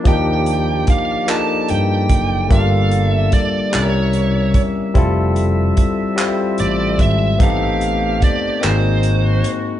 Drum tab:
HH |xxxxxx|xxxxxx|xxxxxx|xxxxxx|
CP |---x--|---x--|---x--|---x--|
BD |o-o--o|o-o--o|o-o--o|o-o---|